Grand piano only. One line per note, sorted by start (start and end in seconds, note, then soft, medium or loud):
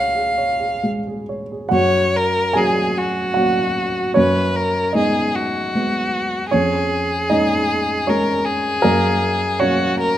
0.00 1.69 C#2 soft
0.00 0.15 G#4 soft
0.00 0.38 C#5 soft
0.15 0.53 G#4 soft
0.38 0.76 C#5 soft
0.60 0.97 G#4 soft
0.83 1.20 G#3 soft
1.07 1.43 G#4 soft
1.29 1.64 C#5 soft
1.52 1.73 G#4 soft
1.69 2.52 F#2 medium
1.69 2.50 F#4 medium
1.69 2.53 F#5 medium
2.53 3.33 F#3 soft
2.53 3.33 A#3 soft
2.53 3.34 C#4 soft
2.53 3.32 G#4 medium
2.53 3.36 G#5 medium
3.34 4.12 F#3 soft
3.34 4.12 A#3 soft
3.34 4.12 C#4 soft
3.34 4.11 F#4 medium
3.34 4.15 F#5 medium
4.14 4.93 F#2 medium
4.14 4.91 C#4 medium
4.14 4.94 C#5 medium
4.93 5.71 G#3 soft
4.93 5.71 B3 soft
4.93 6.48 D#4 soft
4.93 6.51 D#5 medium
5.75 6.48 G#3 soft
5.75 6.48 B3 soft
6.51 7.29 F2 soft
6.51 7.27 C#4 medium
6.51 7.31 C#5 medium
7.30 8.05 G#3 soft
7.30 8.06 C#4 soft
7.30 8.05 D#4 medium
7.30 8.08 D#5 medium
8.07 8.80 G#3 soft
8.07 8.80 C#4 medium
8.07 8.83 C#5 medium
8.82 9.60 F#2 medium
8.82 9.58 A#3 medium
8.82 9.61 A#4 medium
9.60 10.18 F#3 soft
9.60 10.18 A#3 soft
9.60 10.18 C#4 medium
9.60 10.18 C#5 medium